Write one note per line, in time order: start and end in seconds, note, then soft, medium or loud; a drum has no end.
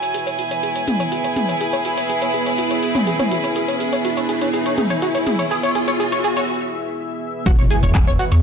0.00 7.42 B3 medium
0.00 6.49 E4 medium
0.00 7.42 E4 medium
0.00 0.83 F#4 medium
0.00 7.42 G#4 medium
0.00 6.49 G#4 medium
0.00 6.49 B4 medium
0.00 1.00 C#5 medium
0.00 0.10 C#5 medium
0.00 7.42 E5 medium
0.00 6.49 G#5 medium
0.00 closed hi-hat medium
0.00 riser medium
0.14 0.17 G#4 medium
0.14 closed hi-hat medium
0.27 0.30 C#5 loud
0.27 closed hi-hat medium
0.39 0.44 F#4 medium
0.39 open hi-hat loud
0.51 0.54 C#5 medium
0.51 closed hi-hat medium
0.63 0.68 G#4 medium
0.63 closed hi-hat medium
0.76 0.83 C#5 medium
0.76 closed hi-hat medium
0.87 0.91 G#4 medium
0.87 open hi-hat loud
0.87 mid tom medium
1.00 1.03 C#5 loud
1.00 closed hi-hat medium
1.12 1.17 F#4 medium
1.12 closed hi-hat medium
1.24 1.27 C#5 medium
1.24 closed hi-hat medium
1.36 1.42 G#4 medium
1.36 open hi-hat loud
1.36 mid tom medium
1.49 1.56 C#5 medium
1.49 closed hi-hat medium
1.61 1.64 G#4 medium
1.61 closed hi-hat medium
1.73 1.76 C#5 loud
1.73 closed hi-hat soft
1.85 1.90 F#4 medium
1.85 open hi-hat loud
1.98 2.01 C#5 medium
1.98 closed hi-hat medium
2.09 2.15 G#4 medium
2.09 closed hi-hat medium
2.22 2.29 C#5 medium
2.22 closed hi-hat medium
2.34 2.37 G#4 medium
2.34 open hi-hat loud
2.46 2.49 C#5 medium
2.46 closed hi-hat medium
2.58 2.63 F#4 medium
2.58 closed hi-hat medium
2.71 2.74 C#5 medium
2.71 closed hi-hat medium
2.83 2.88 G#4 medium
2.83 open hi-hat loud
2.95 3.03 C#5 medium
2.95 closed hi-hat medium
2.95 mid tom medium
3.07 3.10 G#4 medium
3.07 closed hi-hat medium
3.19 3.23 C#5 loud
3.19 closed hi-hat medium
3.19 mid tom medium
3.31 3.37 F#4 medium
3.31 open hi-hat loud
3.44 3.47 C#5 medium
3.44 closed hi-hat medium
3.56 3.61 G#4 medium
3.56 closed hi-hat medium
3.68 3.76 C#5 medium
3.68 closed hi-hat medium
3.80 3.83 G#4 medium
3.80 open hi-hat loud
3.93 3.96 C#5 medium
3.93 closed hi-hat medium
4.05 4.10 F#4 medium
4.05 closed hi-hat medium
4.17 4.20 C#5 medium
4.17 closed hi-hat medium
4.29 4.34 G#4 medium
4.29 open hi-hat loud
4.41 4.49 C#5 medium
4.41 closed hi-hat medium
4.53 4.59 G#4 medium
4.53 closed hi-hat medium
4.66 4.73 C#5 medium
4.66 closed hi-hat medium
4.78 4.81 G#4 medium
4.78 open hi-hat loud
4.78 mid tom medium
4.90 4.93 C#5 loud
4.90 closed hi-hat medium
5.02 5.07 F#4 medium
5.02 closed hi-hat medium
5.15 5.18 C#5 medium
5.15 closed hi-hat medium
5.27 5.32 G#4 medium
5.27 open hi-hat loud
5.27 mid tom medium
5.39 5.46 C#5 medium
5.39 closed hi-hat soft
5.51 5.56 G#4 medium
5.51 closed hi-hat medium
5.63 5.71 C#5 medium
5.63 closed hi-hat medium
5.75 5.78 G#4 medium
5.75 open hi-hat loud
5.88 5.91 C#5 medium
5.88 closed hi-hat medium
6.00 6.05 G#4 medium
6.00 closed hi-hat medium
6.12 6.20 C#5 medium
6.12 closed hi-hat medium
6.24 6.27 G#4 medium
6.24 open hi-hat loud
6.37 6.40 C#5 medium
6.37 closed hi-hat medium
7.46 7.57 E1 loud
7.46 8.42 G#3 medium
7.46 8.42 B3 medium
7.46 8.42 E4 medium
7.46 7.51 F#4 medium
7.46 8.42 B4 medium
7.46 7.51 F#5 medium
7.46 kick loud
7.46 closed hi-hat medium
7.46 impact medium
7.58 7.69 E1 medium
7.58 7.62 C#5 medium
7.58 7.62 C#6 medium
7.58 closed hi-hat medium
7.70 7.76 G#4 medium
7.70 7.76 G#5 medium
7.70 open hi-hat loud
7.83 7.93 E1 medium
7.83 7.90 C#5 medium
7.83 7.90 C#6 medium
7.83 closed hi-hat medium
7.95 8.05 E1 loud
7.95 7.98 G#4 medium
7.95 7.98 G#5 medium
7.95 kick loud
7.95 clap loud
7.95 closed hi-hat medium
7.95 mid tom medium
7.95 low woodblock medium
8.07 8.17 E1 medium
8.07 8.10 C#5 loud
8.07 8.10 C#6 medium
8.07 closed hi-hat medium
8.19 8.24 F#4 medium
8.19 8.24 F#5 medium
8.19 open hi-hat loud
8.32 8.42 E2 medium
8.32 8.35 C#5 medium
8.32 8.35 C#6 medium
8.32 closed hi-hat medium